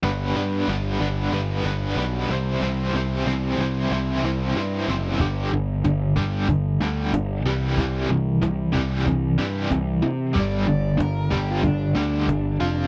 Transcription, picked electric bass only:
\new Staff \with { instrumentName = "Picked electric bass" } { \clef bass \time 4/4 \key g \major \tempo 4 = 93 g,,8 g,8 g,,8 g,,8 g,,8 g,,8 b,,8 c,8 | c,8 c,8 c,8 c,8 c,8 c,8 g,8 fis,,8 | g,,8 g,,8 g,,8 g,,8 g,,8 d,8 g,,8 c,8 | c,8 c,8 c,8 c,8 c,8 g,8 c,8 c8 |
g,,8 g,,8 g,,8 g,,8 g,,8 d,8 g,,8 f,,8 | }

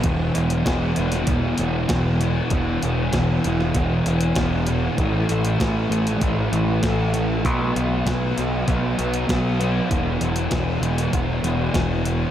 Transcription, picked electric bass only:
\new Staff \with { instrumentName = "Picked electric bass" } { \clef bass \time 4/4 \key a \dorian \tempo 4 = 97 e,,8 e,,8 e,,8 e,,8 e,,8 e,,8 e,,4 | e,,8 e,,8 e,,8 e,,8 e,,8 e,,8 e,,4 | a,,8 a,,8 a,,8 a,,8 a,,8 a,,8 a,,4 | b,,8 b,,8 b,,8 b,,8 b,,8 b,,8 b,,4 |
e,,8 e,,8 e,,8 e,,8 e,,8 e,,8 e,,4 | }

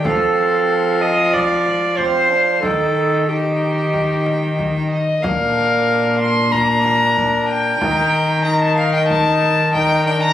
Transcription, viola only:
\new Staff \with { instrumentName = "Viola" } { \time 4/4 \key bes \major \tempo 4 = 93 a'4. ees''8 d''4 c''4 | a'4 g'2~ g'8 r8 | bes'2 bes'2 | bes'4 bes'2 bes'4 | }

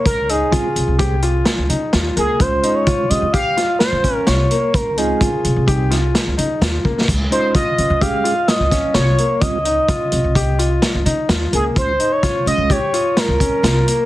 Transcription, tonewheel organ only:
\new Staff \with { instrumentName = "Tonewheel organ" } { \time 5/4 \key des \lydian \tempo 4 = 128 r4 <g c' f'>8 r8 <g c' aes'>8 r2 r8 | <aes des' f'>4. <aes des' g'>8 r2. | r8 <aes c' f'>8 r4 <g c' ees'>8 r2 r8 | r8 <aes des' f'>8 r4 <aes des' aes'>8 r2 r8 |
<g c' f'>8 r1 r8 | <aes des' f'>8 r4 <aes des' f'>8 r2. | }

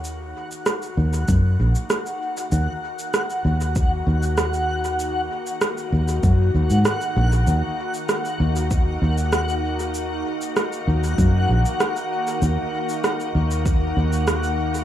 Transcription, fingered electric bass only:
\new Staff \with { instrumentName = "Fingered electric bass" } { \clef bass \time 4/4 \key ees \minor \tempo 4 = 97 ees,8 r4 ees,8 ges,8 bes,,16 r4 r16 | ees,16 r4 r16 ees,4 ees,4.~ | ees,8 r4 ees,8 ges,8 ees,16 aes,16 r8 bes,,8 | ees,16 r4 r16 ees,4 ees,4.~ |
ees,8 r4 ees,8 ges,8 bes,,16 r4 r16 | ees,16 r4 r16 ees,4 ees,4. | }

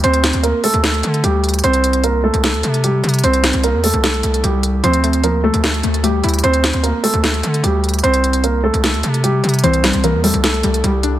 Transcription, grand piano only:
\new Staff \with { instrumentName = "Grand piano" } { \time 4/4 \key c \mixolydian \tempo 4 = 150 <c' c''>4 <bes bes'>8 <a a'>8 <a a'>4 <g g'>4 | <c' c''>4 <bes bes'>8 <a a'>8 <a a'>4 <g g'>4 | <c' c''>4 <bes bes'>8 <a a'>8 <a a'>4 <g g'>4 | <c' c''>4 <bes bes'>8 <a a'>8 <a a'>4 <g g'>4 |
<c' c''>4 <bes bes'>8 <a a'>8 <a a'>4 <g g'>4 | <c' c''>4 <bes bes'>8 <a a'>8 <a a'>4 <g g'>4 | <c' c''>4 <bes bes'>8 <a a'>8 <a a'>4 <g g'>4 | }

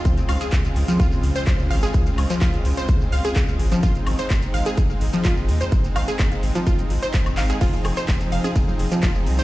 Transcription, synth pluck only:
\new Staff \with { instrumentName = "Synth pluck" } { \time 4/4 \key aes \major \tempo 4 = 127 r8 f''16 aes'16 r8. f16 f'16 r8 c''16 r8 f''16 aes'16 | r8. f16 f'16 r8 c''16 r8 f''16 aes'16 r8. f16 | f'16 r8 c''16 r8 f''16 aes'16 r8. f16 f'16 r8 c''16 | r8 f''16 aes'16 r8. f16 f'16 r8 c''16 r8 f''16 aes'16 |
f'16 r8 c''16 r8 f''16 aes'16 r8. f16 f'16 r8 c''16 | }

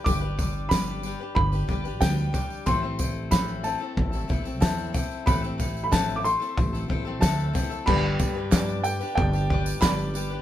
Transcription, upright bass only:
\new Staff \with { instrumentName = "Upright bass" } { \clef bass \time 4/4 \key g \major \tempo 4 = 92 g,,2 g,,8 g,,8 d,8 r8 | a,,2 a,,8 a,,8 e,8 r8 | a,,2 a,,8 a,,8 d,8 r8 | g,,8 g,4. g,,4 g,,4 | }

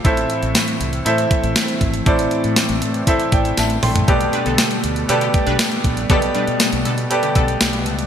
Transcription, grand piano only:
\new Staff \with { instrumentName = "Grand piano" } { \time 4/4 \key a \minor \tempo 4 = 119 << { r1 | r2 r8 <d'' g''>8 <e'' a''>8 <g'' c'''>8~ | <g'' c'''>8 r2. r8 | r1 | } \\ { <a, e' a' c'' e''>4. r8 <e' a' c'' e''>4. r8 | <a, e' a' c'' d''>4. r8 <e' a' c'' e''>4. r8 | <b, g' a' b' d''>4. r8 <g' a' b' d''>4. r8 | <b, g' a' b' d''>4. r8 <g' a' b' d''>4. r8 | } >> }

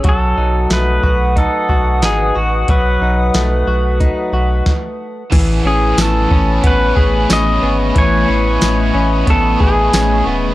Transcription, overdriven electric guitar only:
\new Staff \with { instrumentName = "Overdriven electric guitar" } { \time 4/4 \key a \lydian \tempo 4 = 91 r1 | r1 | <a, e b cis' gis'>8 <b cis' gis'>8 <a, e b cis'>8 <b cis'>8 <e b cis' gis'>8 <b cis' gis'>8 <a, e b cis' gis'>8 <b cis' gis'>8 | <a, e b cis' gis'>8 <b cis' gis'>8 <a, e b cis' gis'>8 <b cis' gis'>8 <e b cis'>8 <b cis' gis'>8 <a, e b cis' gis'>8 <b cis' gis'>8 | }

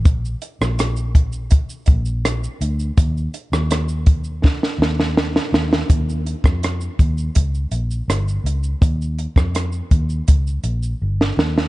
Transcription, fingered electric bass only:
\new Staff \with { instrumentName = "Fingered electric bass" } { \clef bass \time 4/4 \key ees \mixolydian \tempo 4 = 82 bes,,8 r16 bes,,4. r16 bes,,4 d,8 | ees,8 r16 ees,4. r16 ees,4 ees,8 | ees,8. f,8. ees,8 des,8 bes,,8 g,,8 des,8 | ees,8. f,8. ees,8 des,8 bes,,8 g,,8 ees,8 | }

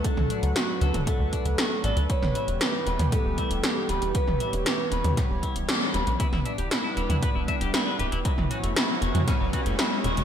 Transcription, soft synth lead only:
\new Staff \with { instrumentName = "Soft synth lead" } { \time 4/4 \key e \dorian \tempo 4 = 117 a'4 fis'4 a'4. d''8 | cis''4 b'4 a'4. g'8 | b'4 b'2 r4 | r1 |
r1 | }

